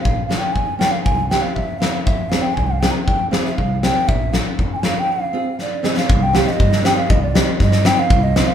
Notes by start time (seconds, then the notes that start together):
0.00 F5
0.05 A#1, kick
0.26 C#4 F4 F5
0.30 A#4, snare
0.38 G5
0.53 F2 G#5, kick
0.79 C#4 F4 A#4 G5, snare
0.91 F5
1.04 C2 G#5, kick
1.30 C4 E4 G4 G5, snare
1.41 F5
1.55 E2 E5, kick
1.79 C4 E4 A#4 F5, snare
2.04 F2 E5, kick
2.29 C4 F4 G#4 F5, snare
2.42 G5
2.54 C2 G#5, kick
2.67 F5
2.81 C4 F4 G#4 G5, snare
2.91 A#5
3.05 F2 G5, kick
3.30 C4 F4 G#4 F5, snare
3.44 E5, snare
3.57 C2 F5, kick
3.82 C4 F4 G4 G5, snare
4.08 A#1 E5, kick
4.33 C#4 F4 A#4 F5, snare
4.59 F2, kick
4.73 G5 G#5
4.79 G#5, snare
4.83 C#4 F4 A#4 F5
5.00 G5
5.12 F5
5.33 C4 F4 G#4
5.59 D5, snare
5.83 C4 F4 G#4 D#5, snare
5.97 F5, snare
6.09 C2, kick
6.23 G5
6.33 C4 D#4 G4 F5, snare
6.48 D#5, snare
6.60 G2, kick
6.73 snare
6.83 C4 D#4 G4 G5, snare
6.97 F5
7.10 C2 D#5, kick
7.23 D5
7.35 C4 D#4 G4 D#5, snare
7.60 G2 D#5, kick, snare
7.72 snare
7.85 C4 D#4 F4 G5, snare
7.99 F5
8.10 C2, kick
8.23 D#5
8.36 C4 D#4 F4, snare
8.48 F5